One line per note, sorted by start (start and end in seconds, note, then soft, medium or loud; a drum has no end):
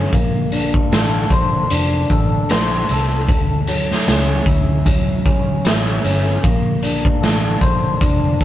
0.00 0.46 D3 medium
0.00 0.12 F#3 medium
0.00 0.22 C#4 medium
0.00 0.22 E4 medium
0.13 0.76 A#1 medium
0.13 3.28 A#3 medium
0.13 kick medium
0.13 closed hi-hat medium
0.52 1.70 D4 medium
0.52 closed hi-hat medium
0.74 kick medium
0.92 1.23 A1 medium
0.92 2.10 A4 medium
0.92 snare medium
0.92 closed hi-hat medium
1.30 1.62 A#1 medium
1.30 2.49 C5 medium
1.30 kick medium
1.30 closed hi-hat medium
1.70 2.02 F1 loud
1.70 4.07 D4 medium
1.70 closed hi-hat medium
2.10 2.42 A1 medium
2.10 2.90 A4 medium
2.10 kick medium
2.10 closed hi-hat medium
2.49 2.81 A#1 loud
2.49 3.38 C5 medium
2.49 snare loud
2.49 closed hi-hat medium
2.89 3.28 C2 medium
2.89 4.46 A4 medium
2.89 closed hi-hat medium
3.28 3.92 D2 medium
3.28 kick medium
3.28 closed hi-hat medium
3.67 4.85 F#3 medium
3.67 closed hi-hat medium
3.91 snare soft
4.08 4.39 C#2 medium
4.08 5.24 C#4 medium
4.08 snare medium
4.08 closed hi-hat medium
4.46 5.61 D2 medium
4.46 5.64 E4 medium
4.46 kick medium
4.46 closed hi-hat medium
4.86 6.43 F#3 medium
4.86 kick medium
4.86 closed hi-hat medium
5.26 6.03 C#4 medium
5.26 kick medium
5.26 closed hi-hat medium
5.65 5.96 A1 medium
5.65 6.52 E4 medium
5.65 snare loud
5.65 closed hi-hat medium
5.87 closed hi-hat medium
6.04 6.36 G1 medium
6.04 6.52 C#4 medium
6.04 closed hi-hat medium
6.43 7.07 A#1 medium
6.43 8.44 A#3 medium
6.43 kick medium
6.43 closed hi-hat medium
6.83 8.01 D4 soft
6.83 closed hi-hat medium
7.05 kick medium
7.22 7.54 A1 medium
7.22 8.41 A4 medium
7.22 snare medium
7.22 closed hi-hat medium
7.61 7.93 A#1 medium
7.61 8.44 C5 medium
7.61 kick medium
7.61 closed hi-hat medium
8.01 8.41 F1 medium
8.01 8.44 D4 medium
8.01 kick medium
8.01 closed hi-hat medium
8.41 8.44 A1 medium
8.41 8.44 A4 medium
8.41 kick medium
8.41 closed hi-hat medium